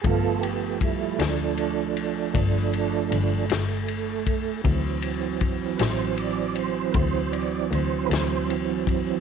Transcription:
<<
  \new Staff \with { instrumentName = "Tonewheel organ" } { \time 12/8 \key d \mixolydian \tempo 4. = 52 <f' gis' a'>8 <b g'>8 <g e'>8 <f d'>2. r4. | r4. <b' c''>8 d''8 c''8 <b' c''>8 d''8 c''8 <b' c''>8 r4 | }
  \new Staff \with { instrumentName = "Tonewheel organ" } { \clef bass \time 12/8 \key d \mixolydian <f a b>1. | <e fis c'>1. | }
  \new Staff \with { instrumentName = "Double bass" } { \clef bass \time 12/8 \key d \mixolydian g,,4. d,4. g,,4 g,,8 g,,4. | d,4. a,,4. d,4 d,8 d,4. | }
  \new DrumStaff \with { instrumentName = "Drums" } \drummode { \time 12/8 <bd cymr>8 cymr8 <bd cymr>8 <cymr sn>8 cymr8 cymr8 <bd cymr>8 cymr8 cymr8 <cymr sn>8 cymr8 <bd cymr>8 | <bd cymr>8 cymr8 <bd cymr>8 <cymr sn>8 cymr8 cymr8 <bd cymr>8 cymr8 cymr8 <cymr sn>8 cymr8 <bd cymr>8 | }
>>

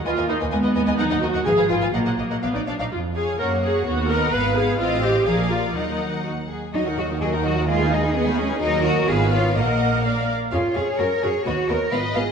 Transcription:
<<
  \new Staff \with { instrumentName = "Violin section" } { \time 2/4 \key ees \minor \tempo 4 = 127 aes''16 aes''16 ees''16 aes''16 aes''16 ees''16 aes''16 aes''16 | ges''16 ges''16 ees''16 ges''16 aes''16 f''16 aes''16 aes''16 | ges''16 ges''16 ees''16 ges''16 f''16 d''16 f''16 f''16 | r8 aes''8 ges''8 ges''8 |
r8 fis''8 f''8 f''8 | f''4 f''4 | ges''4. r8 | r4 bes'4 |
aes'2 | bes'4 ces''4 | bes'4. r8 | des''2~ |
des''4 ees''4 | }
  \new Staff \with { instrumentName = "Violin section" } { \time 2/4 \key ees \minor << { <ces'' ees''>16 <ces'' ees''>16 ces''16 <ces'' ees''>16 <ces'' ees''>16 ces''16 <ces'' ees''>16 <ces'' ees''>16 | <bes' ees''>16 <bes' ees''>16 bes'16 <bes' ees''>16 <ces'' f''>16 ces''16 <ces'' f''>16 <ces'' f''>16 | <bes' ees''>16 <bes' ees''>16 bes'16 <bes' ees''>16 <d'' f''>16 d''16 <d'' f''>16 <d'' f''>16 | r8 <des'' f''>8 des''8 des''8 |
r8 <b' dis''>8 <ces'' f''>8 <ces'' f''>8 | <c'' ees''>4 <bes' d''>4 | <bes' ees''>4 ges'8 aes'8 | ees''16 ges''16 ees''16 ges''16 ees''16 ges''16 ees''16 ges''16 |
ees''16 aes''16 ees''16 aes''16 ees''16 aes''16 ees''16 aes''16 | ees''4 f''4 | ges''4 f''8 r8 | f''8 f''8 des''8 des''8 |
dis''8 dis''8 f''8 f''8 | } \\ { r2 | r2 | r2 | r2 |
r2 | r2 | r2 | ges'16 bes'16 ges'16 bes'16 ges'16 bes'16 ges'16 bes'16 |
aes'16 ces''16 aes'16 ces''16 aes'16 ces''16 aes'16 ces''16 | bes'4 ces''8 des''8 | ees''4 d''8 r8 | des''8 des''8 bes'8 bes'8 |
b'8 b'8 ces''8 ces''8 | } >> }
  \new Staff \with { instrumentName = "Cello section" } { \time 2/4 \key ees \minor bes4 aes4 | ges4 f4 | ges4. r8 | r4 bes4 |
b4 ces'4 | c'4 f4 | ges4. r8 | ees'8 ges'8 aes'8 ges'8 |
f'8 ees'8 ces'8 des'8 | ees'8 ges'8 aes'8 f'8 | bes4. r8 | f'8 aes'8 bes'8 aes'8 |
fis'8 bes'8 ces''8 aes'8 | }
  \new Staff \with { instrumentName = "Viola section" } { \time 2/4 \key ees \minor f'8 ees'8 ces'4 | ees'8 ges'8 aes'8 f'8 | bes4 ces'16 ees'16 d'16 ees'16 | f'8 aes'8 bes'8 aes'8 |
fis'8 bes'8 ces''8 aes'8 | f'8 g'8 aes'8 f'8 | ees'4 r4 | <ges ges'>16 <ees ees'>16 <ges ges'>16 <ees ees'>16 <ges ges'>16 <ees ees'>16 <ges ges'>16 <ees ees'>16 |
<aes aes'>16 <ees ees'>16 <aes aes'>16 <ees ees'>16 <aes aes'>16 <ees ees'>16 <aes aes'>16 <ees ees'>16 | <ges ges'>4 <ces' f'>4 | <bes bes'>4 <bes bes'>8 r8 | <des' aes'>8 <des' aes'>8 <des' ges'>8 <des' ges'>8 |
<b fis'>8 <b fis'>8 <ces' f'>8 <ces' f'>8 | }
  \new Staff \with { instrumentName = "Double bass section" } { \clef bass \time 2/4 \key ees \minor ees,16 ees,16 ees,16 ees,16 ees,16 ees,16 ees,16 ees,16 | ees,16 ees,16 ees,16 ees,16 aes,,16 aes,,16 aes,,16 aes,,16 | bes,,16 bes,,16 bes,,16 bes,,16 bes,,16 bes,,16 bes,,16 bes,,16 | f,4 ges,4 |
dis,4 aes,,4 | a,,4 bes,,4 | ees,4. r8 | ees,2~ |
ees,2 | ees,4 aes,,4 | bes,,4. r8 | f,8 f,8 ges,8 ges,8 |
dis,8 dis,8 aes,,8 aes,,8 | }
>>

